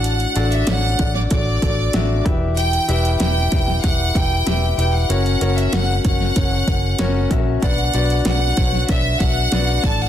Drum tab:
HH |xxxxx-x-x-x-x-x-|xxxxx-x-x-x-x-x-|xxxxx-x-x-x-x-x-|xxxxx-x-x-x-x-x-|
SD |----o--o----o---|----o--o----o---|----o--o----o---|----o--o----o---|
BD |------o-o-o---o-|------o-o-o-----|------o-o-o---o-|o-----o-o-o---o-|